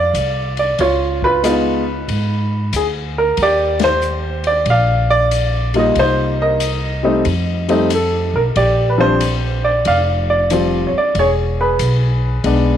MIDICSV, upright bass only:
0, 0, Header, 1, 3, 480
1, 0, Start_track
1, 0, Tempo, 647249
1, 590, Time_signature, 4, 2, 24, 8
1, 9472, End_track
2, 0, Start_track
2, 0, Title_t, "Upright bass"
2, 0, Program_c, 0, 32
2, 0, Note_on_c, 0, 41, 79
2, 79, Note_off_c, 0, 41, 0
2, 100, Note_on_c, 0, 36, 73
2, 555, Note_off_c, 0, 36, 0
2, 584, Note_on_c, 0, 37, 79
2, 1516, Note_off_c, 0, 37, 0
2, 1542, Note_on_c, 0, 44, 83
2, 1995, Note_off_c, 0, 44, 0
2, 2020, Note_on_c, 0, 38, 71
2, 2474, Note_off_c, 0, 38, 0
2, 2504, Note_on_c, 0, 39, 77
2, 3435, Note_off_c, 0, 39, 0
2, 3455, Note_on_c, 0, 34, 81
2, 4391, Note_off_c, 0, 34, 0
2, 4419, Note_on_c, 0, 36, 80
2, 5354, Note_off_c, 0, 36, 0
2, 5382, Note_on_c, 0, 41, 89
2, 6155, Note_off_c, 0, 41, 0
2, 6182, Note_on_c, 0, 35, 69
2, 6335, Note_off_c, 0, 35, 0
2, 6345, Note_on_c, 0, 34, 77
2, 7279, Note_off_c, 0, 34, 0
2, 7309, Note_on_c, 0, 29, 86
2, 8081, Note_off_c, 0, 29, 0
2, 8266, Note_on_c, 0, 28, 78
2, 8721, Note_off_c, 0, 28, 0
2, 8746, Note_on_c, 0, 35, 82
2, 9201, Note_off_c, 0, 35, 0
2, 9224, Note_on_c, 0, 35, 88
2, 9472, Note_off_c, 0, 35, 0
2, 9472, End_track
3, 0, Start_track
3, 0, Title_t, "Muted upright bass strokes"
3, 8102, Note_on_c, 9, 29, 38
3, 8176, Note_off_c, 9, 29, 0
3, 9472, End_track
0, 0, End_of_file